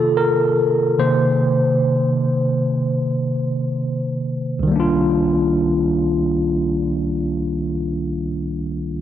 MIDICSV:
0, 0, Header, 1, 2, 480
1, 0, Start_track
1, 0, Key_signature, -3, "minor"
1, 0, Tempo, 500000
1, 8653, End_track
2, 0, Start_track
2, 0, Title_t, "Tine electric piano"
2, 0, Program_c, 0, 4
2, 0, Control_c, 0, 64, 127
2, 0, Note_on_c, 0, 48, 53
2, 0, Note_on_c, 0, 51, 48
2, 0, Note_on_c, 0, 58, 60
2, 0, Note_on_c, 0, 65, 69
2, 0, Note_on_c, 0, 69, 96
2, 164, Note_on_c, 0, 70, 99
2, 167, Note_off_c, 0, 69, 0
2, 947, Note_off_c, 0, 48, 0
2, 947, Note_on_c, 0, 48, 58
2, 949, Control_c, 0, 64, 0
2, 951, Note_off_c, 0, 51, 0
2, 951, Note_on_c, 0, 51, 51
2, 954, Note_off_c, 0, 58, 0
2, 956, Note_on_c, 0, 72, 95
2, 958, Note_off_c, 0, 65, 0
2, 960, Note_on_c, 0, 58, 64
2, 970, Note_off_c, 0, 70, 0
2, 1097, Control_c, 0, 64, 127
2, 1491, Note_off_c, 0, 48, 0
2, 1493, Note_off_c, 0, 51, 0
2, 1498, Note_off_c, 0, 58, 0
2, 2487, Note_off_c, 0, 72, 0
2, 4409, Note_on_c, 0, 36, 79
2, 4444, Note_on_c, 0, 51, 75
2, 4487, Note_on_c, 0, 55, 69
2, 4503, Control_c, 0, 64, 0
2, 4527, Note_on_c, 0, 58, 72
2, 4565, Note_on_c, 0, 62, 74
2, 4604, Note_on_c, 0, 65, 93
2, 4690, Control_c, 0, 64, 127
2, 7303, Note_off_c, 0, 36, 0
2, 7339, Note_off_c, 0, 51, 0
2, 7382, Note_off_c, 0, 55, 0
2, 7422, Note_off_c, 0, 58, 0
2, 7460, Note_off_c, 0, 62, 0
2, 7498, Note_off_c, 0, 65, 0
2, 8653, End_track
0, 0, End_of_file